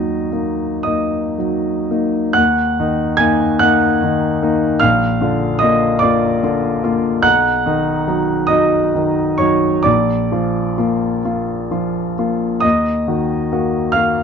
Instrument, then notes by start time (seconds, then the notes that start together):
grand piano
Already playing: D#2 F#3 D#4 D#5
0.32 A#3 D#4
0.83 A#3 D#5 D#6
0.87 D#4
1.38 F#3 D#4
1.91 A#3 D#4
2.33 D#2 F#5 F#6
2.79 D#3 D#4
3.17 A#3 D#4 G#5 G#6
3.59 A#3 D#4 F#5 F#6
4.03 D#3 D#4
4.42 A#3 D#4
4.80 A#1 F5 F6
5.21 D3 F4
5.59 F4 D#5 D#6
5.63 A#3
5.99 A#3 D5 D6
6.03 F4
6.43 D3 F4
6.84 A#3 F4
7.22 B1 F#5 F#6
7.66 D#3 D#4
8.07 F#3 D#4
8.47 F#3 D#4 D#5 D#6
8.95 D#3 D#4
9.38 F#3 D#4 C#5 C#6
9.83 A#1 D5 D6
10.32 F3 F4
10.78 A#3 F4
11.25 A#3 F4
11.71 F3 F4
12.18 A#3 F4
12.60 D#2 D#5 D#6
13.08 D#3 F#4
13.53 A#3 F#4
13.92 A#3 F5 F6
13.96 F#4